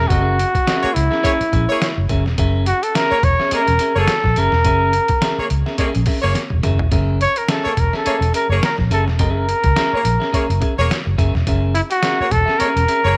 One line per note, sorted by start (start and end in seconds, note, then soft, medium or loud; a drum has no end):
0.01 0.09 C#4 medium
0.08 0.43 F#1 loud
0.08 0.21 C4 medium
0.08 0.95 F#4 medium
0.08 0.22 G4 medium
0.08 0.22 A4 loud
0.08 kick loud
0.08 closed hi-hat medium
0.12 0.23 D#5 medium
0.21 0.37 C#4 medium
0.21 0.37 G#4 medium
0.21 0.37 A#4 loud
0.21 0.38 E5 medium
0.39 closed hi-hat medium
0.55 muted clean electric guitar stroke medium
0.55 kick loud
0.55 closed hi-hat medium
0.67 0.88 C#4 loud
0.67 0.88 G#4 loud
0.67 0.88 A#4 medium
0.67 0.89 E5 loud
0.67 snare loud
0.67 closed hi-hat loud
0.83 0.91 A#3 medium
0.83 0.91 G#4 medium
0.83 0.91 C#5 medium
0.83 muted fingered electric bass stroke soft
0.94 1.08 C#2 medium
0.94 2.09 E4 medium
0.94 muted clean electric guitar stroke soft
0.94 closed hi-hat medium
1.11 1.21 C#4 medium
1.11 1.21 G#4 medium
1.11 1.21 A#4 medium
1.11 1.21 E5 medium
1.11 snare soft
1.23 1.34 A#3 medium
1.23 1.39 C#4 medium
1.23 1.39 G#4 medium
1.23 1.34 G#4 medium
1.23 1.38 A#4 medium
1.23 1.34 C#5 loud
1.23 1.38 E5 loud
1.23 kick medium
1.23 closed hi-hat medium
1.39 muted clean electric guitar stroke soft
1.39 muted fingered electric bass stroke soft
1.39 closed hi-hat soft
1.52 1.65 A#1 loud
1.52 1.65 C#4 medium
1.52 1.65 G#4 medium
1.52 1.65 A#4 medium
1.52 1.65 E5 medium
1.52 kick medium
1.52 closed hi-hat medium
1.68 1.87 A#3 medium
1.68 1.87 G#4 medium
1.68 1.87 C#5 loud
1.68 muted clean electric guitar stroke soft
1.81 muted clean electric guitar stroke soft
1.81 snare loud
1.81 closed hi-hat medium
1.97 2.07 F#1 medium
1.97 muted clean electric guitar stroke soft
2.09 2.26 F#1 medium
2.09 2.25 C#4 medium
2.09 2.25 G#4 medium
2.09 2.24 A#4 medium
2.09 2.24 E5 loud
2.09 kick medium
2.09 closed hi-hat medium
2.25 2.35 E1 loud
2.25 muted clean electric guitar stroke soft
2.25 snare soft
2.38 2.71 F#1 loud
2.38 2.65 C#4 loud
2.38 2.65 G#4 medium
2.38 2.65 A#4 medium
2.38 2.65 E5 loud
2.38 kick loud
2.38 closed hi-hat medium
2.66 2.84 F#4 loud
2.66 closed hi-hat medium
2.83 2.98 A4 medium
2.83 muted clean electric guitar stroke soft
2.83 closed hi-hat medium
2.95 3.10 C#4 medium
2.95 3.10 G#4 loud
2.95 3.10 A#4 medium
2.95 3.26 A#4 loud
2.95 3.11 E5 loud
2.95 snare loud
2.95 closed hi-hat loud
3.10 3.19 A#3 medium
3.10 3.19 G#4 medium
3.10 3.19 C#5 loud
3.10 muted fingered electric bass stroke soft
3.23 3.35 E1 medium
3.23 3.52 C#5 loud
3.23 muted clean electric guitar stroke soft
3.23 kick medium
3.23 closed hi-hat medium
3.40 3.49 C#4 medium
3.40 3.49 G#4 medium
3.40 3.49 A#4 medium
3.40 3.49 E5 medium
3.40 snare soft
3.51 3.62 A#3 medium
3.51 3.73 C#4 medium
3.51 3.68 G#4 medium
3.51 3.62 G#4 medium
3.51 3.67 A#4 medium
3.51 4.00 A#4 loud
3.51 3.63 C#5 medium
3.51 3.67 E5 medium
3.51 muted fingered electric bass stroke soft
3.51 closed hi-hat medium
3.68 3.77 E1 medium
3.68 muted clean electric guitar stroke soft
3.68 closed hi-hat soft
3.79 3.92 C#4 medium
3.79 3.92 G#4 medium
3.79 3.92 A#4 medium
3.79 3.93 E5 medium
3.79 closed hi-hat medium
3.95 4.05 F#1 medium
3.95 4.14 A#3 loud
3.95 4.14 G#4 medium
3.95 4.41 A4 loud
3.95 4.14 C#5 loud
3.95 muted clean electric guitar stroke soft
4.08 muted clean electric guitar stroke soft
4.08 snare loud
4.08 closed hi-hat medium
4.24 4.34 A#1 medium
4.24 muted clean electric guitar stroke soft
4.24 kick medium
4.24 snare soft
4.36 4.49 F#1 medium
4.36 4.53 C#4 medium
4.36 4.52 G#4 medium
4.36 4.53 A#4 medium
4.36 5.52 A#4 loud
4.36 4.52 E5 medium
4.36 closed hi-hat medium
4.52 4.65 E1 loud
4.52 muted clean electric guitar stroke soft
4.52 snare soft
4.65 4.98 F#1 loud
4.65 4.92 C#4 loud
4.65 4.92 G#4 medium
4.65 4.92 A#4 medium
4.65 4.92 E5 medium
4.65 kick loud
4.65 closed hi-hat medium
4.93 closed hi-hat medium
5.08 muted clean electric guitar stroke soft
5.08 kick loud
5.08 closed hi-hat medium
5.21 5.37 C#4 medium
5.21 5.37 G#4 medium
5.21 5.37 A#4 medium
5.21 5.38 E5 medium
5.21 snare loud
5.21 closed hi-hat loud
5.38 5.46 A#3 medium
5.38 5.46 G#4 medium
5.38 5.46 C#5 medium
5.38 muted fingered electric bass stroke soft
5.50 5.62 C#2 medium
5.50 muted clean electric guitar stroke soft
5.50 closed hi-hat medium
5.66 5.76 C#4 soft
5.66 5.76 G#4 medium
5.66 5.76 A#4 medium
5.66 5.76 E5 medium
5.66 snare soft
5.78 5.89 A#3 medium
5.78 5.99 C#4 medium
5.78 5.89 G#4 medium
5.78 5.94 G#4 medium
5.78 5.94 A#4 medium
5.78 5.89 C#5 medium
5.78 5.93 E5 medium
5.78 muted fingered electric bass stroke soft
5.78 kick medium
5.78 closed hi-hat medium
5.94 6.05 A#1 medium
5.94 muted clean electric guitar stroke soft
5.94 closed hi-hat soft
6.06 6.19 C#4 medium
6.06 6.19 G#4 medium
6.06 6.19 A#4 medium
6.06 6.20 E5 medium
6.06 kick loud
6.06 open hi-hat medium
6.22 6.33 F#1 medium
6.22 6.40 A#3 loud
6.22 6.40 G#4 medium
6.22 6.40 C#5 loud
6.35 muted clean electric guitar stroke soft
6.35 snare medium
6.35 closed hi-hat medium
6.50 6.61 E1 medium
6.50 muted clean electric guitar stroke soft
6.50 high tom medium
6.63 6.80 F#1 medium
6.63 6.79 C#4 medium
6.63 6.79 G#4 medium
6.63 6.78 A#4 medium
6.63 6.78 E5 medium
6.63 closed hi-hat medium
6.63 mid tom loud
6.79 6.89 E1 medium
6.79 muted clean electric guitar stroke medium
6.79 floor tom medium
6.91 7.25 F#1 loud
6.91 7.18 C#4 medium
6.91 7.18 G#4 medium
6.91 7.19 A#4 loud
6.91 7.19 E5 loud
6.91 kick loud
6.91 closed hi-hat medium
7.21 7.39 C#5 loud
7.21 closed hi-hat medium
7.36 7.52 A#4 loud
7.36 muted clean electric guitar stroke soft
7.36 closed hi-hat soft
7.49 7.64 C#4 medium
7.49 7.64 G#4 medium
7.49 7.81 A4 medium
7.49 7.65 A#4 medium
7.49 7.65 E5 loud
7.49 snare loud
7.49 closed hi-hat loud
7.64 7.73 A#3 medium
7.64 7.72 G#4 medium
7.64 7.73 C#5 medium
7.64 muted fingered electric bass stroke soft
7.77 7.89 E1 medium
7.77 7.95 A#4 medium
7.77 muted clean electric guitar stroke soft
7.77 kick medium
7.77 closed hi-hat medium
7.93 8.03 C#4 medium
7.93 8.03 G#4 medium
7.93 8.33 A4 medium
7.93 8.03 A#4 medium
7.93 8.03 E5 medium
7.93 snare soft
8.05 8.17 A#3 medium
8.05 8.21 C#4 medium
8.05 8.21 G#4 medium
8.05 8.16 G#4 medium
8.05 8.21 A#4 loud
8.05 8.16 C#5 medium
8.05 8.21 E5 medium
8.05 muted fingered electric bass stroke soft
8.05 closed hi-hat loud
8.21 8.30 E1 medium
8.21 muted clean electric guitar stroke soft
8.21 closed hi-hat soft
8.33 8.46 C#4 medium
8.33 8.46 G#4 medium
8.33 8.46 A#4 medium
8.33 8.48 A#4 medium
8.33 8.46 E5 medium
8.33 closed hi-hat medium
8.49 8.59 F#1 medium
8.49 8.69 A#3 medium
8.49 8.69 G#4 loud
8.49 8.68 C#5 loud
8.49 muted clean electric guitar stroke soft
8.62 8.77 A#4 medium
8.62 muted clean electric guitar stroke soft
8.62 snare loud
8.62 closed hi-hat medium
8.78 8.88 A#1 medium
8.78 muted clean electric guitar stroke soft
8.78 kick medium
8.78 snare soft
8.90 9.07 F#1 medium
8.90 9.06 C#4 medium
8.90 9.07 G#4 medium
8.90 9.05 A4 medium
8.90 9.06 A#4 loud
8.90 9.06 E5 medium
8.90 closed hi-hat medium
9.07 9.20 E1 medium
9.07 muted clean electric guitar stroke soft
9.07 snare soft
9.19 9.52 F#1 loud
9.19 9.30 C4 medium
9.19 9.30 G4 loud
9.19 9.30 A4 loud
9.19 10.86 A#4 medium
9.19 9.31 D#5 medium
9.19 kick loud
9.19 closed hi-hat medium
9.30 9.46 C#4 medium
9.30 9.46 G#4 loud
9.30 9.46 A#4 loud
9.30 9.46 E5 medium
9.49 closed hi-hat medium
9.64 9.73 C#2 medium
9.64 muted clean electric guitar stroke soft
9.64 kick loud
9.64 closed hi-hat medium
9.76 9.91 C#4 medium
9.76 9.91 G#4 medium
9.76 9.92 A#4 medium
9.76 9.92 E5 loud
9.76 snare loud
9.76 closed hi-hat loud
9.92 10.01 A#3 medium
9.92 10.00 G#4 medium
9.92 10.01 C#5 medium
9.92 muted fingered electric bass stroke soft
10.04 10.16 A#1 medium
10.04 muted clean electric guitar stroke soft
10.04 closed hi-hat medium
10.20 10.30 C#4 medium
10.20 10.30 G#4 medium
10.20 10.30 A#4 medium
10.20 10.30 E5 medium
10.20 snare soft
10.32 10.44 A#3 medium
10.32 10.48 C#4 medium
10.32 10.48 G#4 medium
10.32 10.44 G#4 medium
10.32 10.48 A#4 medium
10.32 10.44 C#5 medium
10.32 10.47 E5 medium
10.32 muted fingered electric bass stroke soft
10.32 kick medium
10.32 closed hi-hat loud
10.48 10.58 F#1 medium
10.48 muted clean electric guitar stroke soft
10.48 closed hi-hat soft
10.60 10.73 C#4 medium
10.60 10.73 G#4 medium
10.60 10.73 A#4 medium
10.60 10.73 E5 medium
10.60 kick loud
10.60 closed hi-hat medium
10.77 10.87 E1 medium
10.77 10.96 A#3 loud
10.77 10.96 G#4 medium
10.77 10.96 C#5 loud
10.77 muted clean electric guitar stroke soft
10.89 muted clean electric guitar stroke soft
10.89 snare loud
10.89 closed hi-hat medium
11.06 11.15 F#1 medium
11.06 muted clean electric guitar stroke soft
11.18 11.30 F#1 medium
11.18 11.33 C#4 medium
11.18 11.33 G#4 medium
11.18 11.34 A#4 loud
11.18 11.34 E5 loud
11.18 kick medium
11.18 closed hi-hat medium
11.35 11.44 E1 medium
11.35 muted clean electric guitar stroke soft
11.35 snare soft
11.47 11.80 F#1 loud
11.47 11.73 C#4 medium
11.47 11.73 G#4 medium
11.47 11.74 A#4 medium
11.47 11.74 E5 medium
11.47 kick loud
11.47 closed hi-hat medium
11.74 11.82 E4 medium
11.74 closed hi-hat medium
11.90 12.33 F#4 medium
11.90 muted clean electric guitar stroke soft
11.90 closed hi-hat medium
12.02 12.18 C#4 medium
12.02 12.18 G#4 medium
12.02 12.18 A#4 loud
12.02 12.18 E5 loud
12.02 snare loud
12.02 closed hi-hat loud
12.20 12.28 A#3 medium
12.20 12.28 G#4 medium
12.20 12.28 C#5 medium
12.20 muted fingered electric bass stroke soft
12.31 12.43 E1 medium
12.31 12.60 A4 loud
12.31 muted clean electric guitar stroke soft
12.31 kick medium
12.31 closed hi-hat medium
12.46 12.57 C#4 medium
12.46 12.56 G#4 medium
12.46 12.56 A#4 medium
12.46 12.56 E5 medium
12.46 snare soft
12.59 12.70 A#3 medium
12.59 12.80 C#4 medium
12.59 12.75 G#4 medium
12.59 12.70 G#4 medium
12.59 13.17 A#4 loud
12.59 12.75 A#4 medium
12.59 12.70 C#5 medium
12.59 12.74 E5 medium
12.59 muted fingered electric bass stroke soft
12.59 closed hi-hat loud
12.75 12.85 E1 medium
12.75 muted clean electric guitar stroke soft
12.75 closed hi-hat soft
12.88 13.00 C#4 medium
12.88 13.00 G#4 medium
12.88 13.00 A#4 medium
12.88 13.00 E5 medium
12.88 closed hi-hat medium
13.04 13.13 F#1 loud
13.04 13.17 A#3 medium
13.04 13.17 G#4 loud
13.04 13.17 C#5 loud